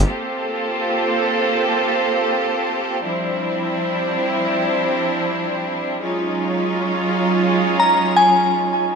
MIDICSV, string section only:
0, 0, Header, 1, 2, 480
1, 0, Start_track
1, 0, Tempo, 500000
1, 8594, End_track
2, 0, Start_track
2, 0, Title_t, "String section"
2, 0, Program_c, 0, 48
2, 49, Note_on_c, 0, 58, 74
2, 49, Note_on_c, 0, 67, 68
2, 50, Note_on_c, 0, 60, 70
2, 50, Note_on_c, 0, 65, 71
2, 50, Note_on_c, 0, 69, 87
2, 2892, Note_off_c, 0, 58, 0
2, 2892, Note_off_c, 0, 60, 0
2, 2892, Note_off_c, 0, 67, 0
2, 2892, Note_off_c, 0, 69, 0
2, 2893, Note_off_c, 0, 65, 0
2, 2910, Note_on_c, 0, 53, 81
2, 2911, Note_on_c, 0, 55, 69
2, 2911, Note_on_c, 0, 60, 71
2, 2911, Note_on_c, 0, 62, 69
2, 2911, Note_on_c, 0, 64, 81
2, 5753, Note_off_c, 0, 53, 0
2, 5754, Note_off_c, 0, 55, 0
2, 5754, Note_off_c, 0, 60, 0
2, 5754, Note_off_c, 0, 62, 0
2, 5754, Note_off_c, 0, 64, 0
2, 5773, Note_on_c, 0, 63, 72
2, 5774, Note_on_c, 0, 54, 77
2, 5774, Note_on_c, 0, 61, 69
2, 5775, Note_on_c, 0, 56, 72
2, 5775, Note_on_c, 0, 65, 90
2, 8594, Note_off_c, 0, 54, 0
2, 8594, Note_off_c, 0, 56, 0
2, 8594, Note_off_c, 0, 61, 0
2, 8594, Note_off_c, 0, 63, 0
2, 8594, Note_off_c, 0, 65, 0
2, 8594, End_track
0, 0, End_of_file